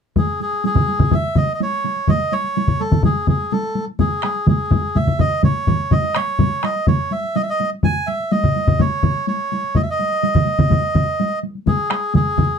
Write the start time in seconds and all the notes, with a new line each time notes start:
0.16 G#4, taiko low-mid, taiko mid, taiko high
0.40 G#4, taiko high
0.53 taiko high
0.64 G#4, taiko high
0.76 taiko low-mid, taiko mid
0.88 taiko high
0.99 taiko low-mid, taiko mid, taiko high
1.11 E5, taiko low-mid, taiko mid, taiko high
1.23 taiko high
1.35 D#5, taiko low-mid, taiko mid, taiko high
1.48 taiko high
1.54 D#5
1.61 C#5, taiko high
1.73 taiko high
1.84 taiko high
1.96 taiko high
2.08 D#5, taiko low-mid, taiko mid, taiko high
2.32 C#5, taiko high
2.44 taiko high
2.57 taiko high
2.68 taiko low-mid, taiko mid
2.80 A4, taiko high
2.91 taiko low-mid, taiko mid
3.03 G#4, taiko low-mid, taiko mid, taiko high
3.16 taiko high
3.27 G#4, taiko low-mid, taiko mid, taiko high
3.41 taiko high
3.52 A4, taiko high
3.64 taiko high
3.75 taiko high
3.88 taiko high
3.99 G#4, taiko low-mid, taiko mid, taiko high
4.23 G#4, taiko rim, taiko high
4.36 taiko high
4.47 G#4, taiko low-mid, taiko mid, taiko high
4.71 taiko low-mid, taiko mid, taiko high
4.84 taiko high
4.95 E5, taiko low-mid, taiko mid, taiko high
5.07 taiko low-mid, taiko mid
5.19 D#5, taiko low-mid, taiko mid, taiko high
5.31 taiko high
5.43 C#5, taiko low-mid, taiko mid, taiko high
5.56 taiko high
5.67 taiko low-mid, taiko mid, taiko high
5.80 taiko high
5.91 D#5, taiko low-mid, taiko mid, taiko high
6.04 taiko high
6.15 C#5, taiko rim, taiko high
6.28 taiko high
6.39 taiko low-mid, taiko mid, taiko high
6.52 taiko high
6.63 D#5, taiko rim, taiko high
6.76 taiko high
6.87 C#5, taiko low-mid, taiko mid, taiko high
7.00 taiko high
7.11 E5, taiko high
7.24 taiko high
7.36 D#5, taiko high
7.43 E5
7.49 D#5, taiko high
7.60 taiko high
7.73 taiko high
7.83 G#5, taiko low-mid, taiko mid, taiko high
8.07 E5, taiko high
8.20 taiko high
8.32 D#5, taiko high
8.44 taiko low-mid, taiko mid, taiko high
8.56 taiko high
8.67 taiko low-mid, taiko mid, taiko high
8.79 C#5, taiko low-mid, taiko mid, taiko high
9.03 taiko low-mid, taiko mid, taiko high
9.15 taiko high
9.27 C#5, taiko high
9.40 taiko high
9.52 taiko high
9.64 taiko high
9.75 D#5, taiko low-mid, taiko mid, taiko high
9.83 E5
9.90 D#5
9.99 taiko high
10.12 taiko high
10.23 taiko high
10.35 taiko low-mid, taiko mid
10.46 taiko high
10.59 taiko low-mid, taiko mid, taiko high
10.70 taiko low-mid, taiko mid, taiko high
10.83 taiko high
10.95 taiko low-mid, taiko mid, taiko high
11.08 taiko high
11.20 taiko high
11.43 taiko high
11.55 taiko high
11.66 G#4, taiko low-mid, taiko mid, taiko high
11.90 G#4, taiko rim, taiko high
12.14 G#4, taiko low-mid, taiko mid, taiko high
12.26 taiko high
12.38 taiko low-mid, taiko mid, taiko high
12.49 taiko high